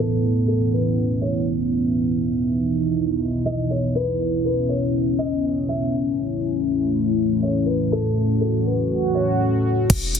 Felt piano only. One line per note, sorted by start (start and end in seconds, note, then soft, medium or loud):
0.00 0.45 A4 medium
0.47 0.71 A4 medium
0.73 1.19 B4 medium
1.21 1.45 C#5 medium
3.46 3.69 D#5 medium
3.70 3.94 C#5 medium
3.95 4.42 B4 loud
4.45 4.68 B4 medium
4.69 5.16 C#5 medium
5.18 5.65 D#5 medium
5.69 5.92 E5 medium
7.43 7.66 C#5 medium
7.66 7.90 B4 medium
7.92 8.38 A4 medium
8.40 8.64 A4 medium
8.66 9.13 B4 medium
9.15 9.39 C#5 medium